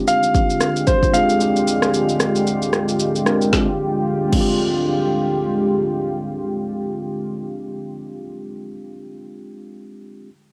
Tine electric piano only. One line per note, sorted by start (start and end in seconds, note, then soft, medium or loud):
0.00 0.13 G#3 medium
0.00 0.14 C4 medium
0.00 0.14 D4 medium
0.00 0.15 F4 medium
0.00 0.15 G4 loud
1.13 1.35 G#3 medium
1.13 1.36 C4 medium
1.13 1.36 D4 medium
1.13 1.37 F4 medium
1.13 1.37 G#4 medium
1.39 2.26 G#3 medium
1.39 2.26 C4 medium
1.39 2.26 D4 medium
1.39 2.27 F4 medium
1.39 2.27 G4 medium
3.25 3.45 G#3 medium
3.25 3.48 C4 medium
3.25 3.49 D4 medium
3.25 3.49 F4 medium
3.25 3.50 A#4 medium
3.46 3.66 G#3 medium
3.46 3.68 C4 medium
3.53 3.70 D4 medium
3.53 3.72 F4 medium
3.61 3.74 G4 medium
4.26 8.09 G#3 medium
4.26 8.13 C4 medium
4.33 8.17 D4 medium
4.33 8.20 F4 medium
4.40 8.24 G4 medium